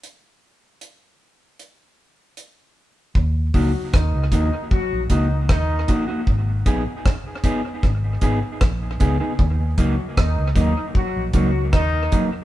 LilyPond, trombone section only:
\new Staff \with { instrumentName = "Trombone section" } { \time 4/4 \key ees \minor \tempo 4 = 77 r1 | r8 <ges ges'>8 <ees ees'>8 <ees ees'>8 <ges ges'>8 <ees ees'>8 <ees ees'>8. r16 | r1 | r8 <ges ges'>8 <ees ees'>8 <ees ees'>8 <ges ges'>8 <ges ges'>8 <ees ees'>8. r16 | }